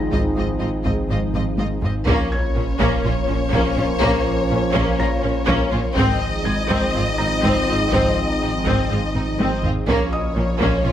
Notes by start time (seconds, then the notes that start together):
Already playing: G#1 G#2 F3 C4 D#4 G#4 A#5 A#6
0.11 G#1 G#2 C4 F4 D#5, taiko
0.36 G#1 G#2 C4 F4 D#5
0.59 G#1 G#2 C4 F4 D#5
0.84 G#1 G#2 C4 F4 D#5, taiko
1.10 G#1 G#2 C4 F4 D#5
1.34 G#1 G#2 C4 F4 D#5, taiko low-mid
1.58 G#1 G#2 C4 F4 D#5, taiko high
1.82 G#1 G#2 C4 F4 D#5, taiko low
2.06 A#1 A#2 F3 A#3 C#4 F4 A#4 C#5, taiko, sub drop
2.32 G#6
2.55 A#1 A#2 C#4
2.80 A#1 A#2 A#3 C#4, taiko
3.04 A#1 A#2 C#4 F4
3.28 A#1 A#2 C#4
3.52 A#1 A#2 A#3 C#4, taiko
3.77 A#1 A#2 C#4 F4
4.00 A#1 A#2 A#3 C#4, taiko
4.49 A#1 A#2 C#4
4.74 A#1 A#2 A#3 C#4, taiko
4.98 A#1 A#2 C#4 F4 A#5 A#6
5.22 A#1 A#2 C#4
5.46 A#1 A#2 A#3 C#4, taiko
5.71 A#1 A#2 C#4 F4
5.95 G#1 G#2 F3 C4 D#4 G#4 D#5, taiko
6.45 G#1 G#2 C4 D#4 G#6
6.69 G#1 G#2 C4, taiko
6.94 G#1 G#2 C4 F4
7.17 G#1 G#2 C4 D#4 A#5 A#6
7.42 G#1 G#2 C4, taiko
7.67 G#1 G#2 C4 F4
7.92 G#1 G#2 C4, taiko
8.42 G#1 G#2 C4 D#4
8.66 G#1 G#2 C4, taiko
8.90 G#1 G#2 C4 F4
9.14 G#1 G#2 C4 D#4, taiko low-mid
9.38 G#1 G#2 C4, taiko high
9.63 G#1 G#2 C4 F4, taiko low
9.87 A#1 A#2 F3 A#3 C#4 F4 A#4 C#5, taiko
10.12 D#5 D#6
10.35 A#1 A#2 C#4
10.59 A#1 A#2 A#3 C#4, taiko
10.85 A#1 A#2 C#4 F4